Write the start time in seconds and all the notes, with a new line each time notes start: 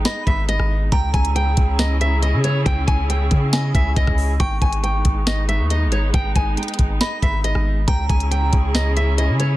Already playing: G#3 B3 D#4
0.05 D#5 B5, snare, closed hi-hat
0.27 G#1 E5, kick, closed hi-hat
0.48 D#5, closed hi-hat
0.60 G#1, cross-stick
0.92 C#2 C#3 C#4 E4 G#4 G5 A#5, kick, closed hi-hat
1.13 C#2 G#5, kick, closed hi-hat
1.25 closed hi-hat
1.35 G5, closed hi-hat
1.57 C#2, kick, closed hi-hat
1.79 D#5, snare, closed hi-hat
2.01 E5, closed hi-hat
2.22 D#5, closed hi-hat
2.33 C#3
2.44 C#5, closed hi-hat
2.66 C#2 G5, kick, closed hi-hat
2.87 C#2 G#5, kick, closed hi-hat
3.10 G5, closed hi-hat
3.31 C#3, kick, closed hi-hat
3.53 D#5 G#5, snare, closed hi-hat
3.75 C#2 E5, kick, cross-stick, closed hi-hat
3.96 C#2 D#5, kick, closed hi-hat
4.07 kick, cross-stick
4.18 open hi-hat
4.40 G#1 G#3 B3 D#4 G5 C#6, kick, closed hi-hat
4.61 G#1 G#5, kick, closed hi-hat
4.73 closed hi-hat
4.83 G5, closed hi-hat
5.05 G#1, kick, closed hi-hat
5.27 D#5, snare, closed hi-hat
5.49 E5, closed hi-hat
5.60 D#2
5.70 D#5, closed hi-hat
5.87 G#1
5.92 C#5, closed hi-hat
6.14 G#1 G5, kick, closed hi-hat
6.36 G#1 G#5, kick, closed hi-hat
6.57 G5, closed hi-hat
6.63 closed hi-hat
6.68 closed hi-hat
6.74 closed hi-hat
6.79 G#1, kick, closed hi-hat
7.01 D#5 B5, snare, closed hi-hat
7.22 G#1 E5, kick, closed hi-hat
7.44 D#5, closed hi-hat
7.55 G#1, cross-stick
7.88 C#2 C#3 C#4 E4 G#4 G5 A#5, kick, closed hi-hat
8.09 C#2 G#5, kick, closed hi-hat
8.20 closed hi-hat
8.31 G5, closed hi-hat
8.53 C#2, kick, closed hi-hat
8.75 D#5, snare, closed hi-hat
8.97 E5, closed hi-hat
9.18 D#5, closed hi-hat
9.29 C#3
9.40 C#5, closed hi-hat